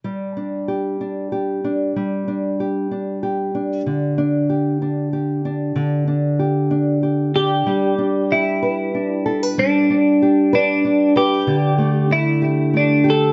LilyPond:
<<
  \new Staff \with { instrumentName = "Clean electric guitar" } { \time 6/8 \key g \major \tempo 4. = 63 r2. | r2. | r2. | r2 r8 g'8~ |
g'4 e'2 | d'4. d'4 g'8~ | g'4 e'4 d'8 a'8 | }
  \new Staff \with { instrumentName = "Nylon-string guitar" } { \time 6/8 \key g \major g8 d'8 g'8 d'8 g'8 d'8 | g8 d'8 g'8 d'8 g'8 d'8 | d8 d'8 g'8 d'8 g'8 d'8 | d8 d'8 g'8 d'8 g'8 d'8 |
g8 d'8 g'8 b'8 d'8 a'16 b'16 | g8 d'8 g'8 b'8 d'8 b'8 | d8 a8 d'8 g'8 a8 g'8 | }
>>